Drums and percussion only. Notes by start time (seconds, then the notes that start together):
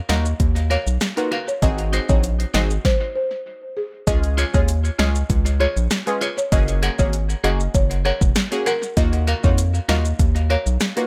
0.09 snare, closed hi-hat, maracas
0.25 maracas
0.40 kick, closed hi-hat, maracas
0.56 closed hi-hat, maracas
0.71 closed hi-hat, maracas
0.87 maracas
1.01 cross-stick, snare, closed hi-hat, maracas
1.17 closed hi-hat, maracas
1.32 closed hi-hat
1.48 maracas
1.62 kick, closed hi-hat, maracas
1.78 closed hi-hat, maracas
1.93 closed hi-hat, maracas
2.09 kick, maracas
2.23 closed hi-hat, maracas
2.40 closed hi-hat, maracas
2.54 snare, closed hi-hat, maracas
2.70 maracas
2.85 kick, snare
4.07 kick, closed hi-hat, maracas
4.23 closed hi-hat, maracas
4.38 closed hi-hat, maracas
4.54 kick, maracas
4.68 closed hi-hat, maracas
4.85 maracas
4.99 snare, closed hi-hat
5.15 maracas
5.30 kick, closed hi-hat, maracas
5.46 closed hi-hat, maracas
5.61 closed hi-hat
5.77 maracas
5.91 cross-stick, snare, closed hi-hat, maracas
6.07 closed hi-hat, maracas
6.21 closed hi-hat, maracas
6.38 maracas
6.52 kick, closed hi-hat, maracas
6.68 closed hi-hat, maracas
6.83 closed hi-hat, maracas
6.99 kick, maracas
7.13 closed hi-hat, maracas
7.30 maracas
7.44 closed hi-hat
7.60 maracas
7.75 kick, closed hi-hat, maracas
7.91 closed hi-hat, maracas
8.05 closed hi-hat
8.21 kick, maracas
8.35 cross-stick, snare, closed hi-hat, maracas
8.52 closed hi-hat, maracas
8.66 closed hi-hat, maracas
8.83 maracas
8.97 kick, closed hi-hat, maracas
9.13 closed hi-hat, maracas
9.28 closed hi-hat, maracas
9.44 kick, maracas
9.58 closed hi-hat, maracas
9.75 maracas
9.89 snare, closed hi-hat
10.05 maracas
10.19 kick, closed hi-hat, maracas
10.36 closed hi-hat, maracas
10.50 closed hi-hat
10.66 maracas
10.80 cross-stick, snare, closed hi-hat, maracas
10.97 closed hi-hat, maracas